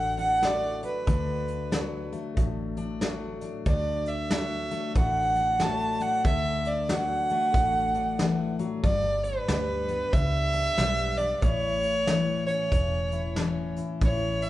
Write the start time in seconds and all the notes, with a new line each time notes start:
Already playing: A1 A2 D3 F#3 A3 D4 F#5
0.18 D4 F#5, closed hi-hat
0.42 F#3 A3 D5, snare, closed hi-hat
0.83 D4 B4, closed hi-hat
1.07 D2 D3 D4, kick, closed hi-hat
1.48 closed hi-hat
1.71 F#3, snare, closed hi-hat
2.12 A3, closed hi-hat
2.37 A1 A2, kick, closed hi-hat
2.77 D4, closed hi-hat
3.01 F#3 A3, snare, closed hi-hat
3.41 D4, closed hi-hat
3.66 D2 D3 D4 D5, kick, closed hi-hat
4.06 E5, closed hi-hat
4.30 F#3, snare, closed hi-hat
4.71 A3, closed hi-hat
4.95 A1 A2 F#5, kick, closed hi-hat
5.36 D4, closed hi-hat
5.60 F#3 A3 A5, snare, closed hi-hat
6.00 D4 F#5, closed hi-hat
6.24 D2 D3 D4 E5, kick, closed hi-hat
6.65 D5, closed hi-hat
6.89 F#3 F#5, snare, closed hi-hat
7.29 A3, closed hi-hat
7.54 A1 A2, kick, closed hi-hat
7.94 D4, closed hi-hat
8.19 E3, snare, closed hi-hat
8.59 F#3, closed hi-hat
8.84 G1 G2 D4 D5, kick, closed hi-hat
9.24 B4, closed hi-hat
9.48 D2 G3, snare, closed hi-hat
9.88 B3, closed hi-hat
10.13 C#2 E5, kick, closed hi-hat
10.53 D4, closed hi-hat
10.78 B1 G3 B3, snare, closed hi-hat
11.17 D4 D5, closed hi-hat
11.42 A1 A2 E4 C#5, kick, closed hi-hat
11.82 closed hi-hat
12.07 E3, snare, closed hi-hat
12.46 C#4 C#5, closed hi-hat
12.71 E1 A2, kick, closed hi-hat
13.11 E4, closed hi-hat
13.36 E3 C#4, snare, closed hi-hat
13.76 E4, closed hi-hat
14.01 A1 A2 E4 C#5, kick, closed hi-hat
14.42 E5, closed hi-hat